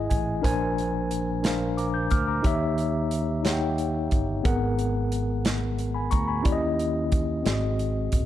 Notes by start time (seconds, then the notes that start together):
Already playing: G#2 E4 G#4 D#5 F#5 G#5
0.10 A1 G#5, kick, closed hi-hat
0.42 A#1 A#2 D4 A#4 C5 G#5, kick, closed hi-hat
0.78 closed hi-hat
1.11 closed hi-hat
1.42 D4 A#4 C5 F5, snare, closed hi-hat
1.77 A#5 D6, closed hi-hat
1.94 G6
2.10 D2 D6 F6, kick, closed hi-hat
2.28 A#5 D6
2.42 D#2 D#3 D#4 G4 C#5 E5, kick, closed hi-hat
2.78 closed hi-hat
3.11 closed hi-hat
3.43 D#4 G4 C#5 F#5, snare, closed hi-hat
3.52 G5
3.78 closed hi-hat
4.11 G1, kick, closed hi-hat
4.43 G#1 G#2 B3 G#4 A#4 F#5, kick, closed hi-hat
4.79 closed hi-hat
5.12 closed hi-hat
5.45 snare, closed hi-hat
5.79 closed hi-hat
5.94 G#5 B5
6.11 D2 A#5 C#6, kick, closed hi-hat
6.28 G#5 B5
6.42 D#2 D#3 C#4 E4 G4 D5, kick, closed hi-hat
6.52 D#5
6.79 closed hi-hat
7.12 kick, closed hi-hat
7.43 G#1 G#2 C4 F#4 G#4 D5, snare, closed hi-hat
7.53 D#5
7.79 closed hi-hat
8.12 D#1, kick, closed hi-hat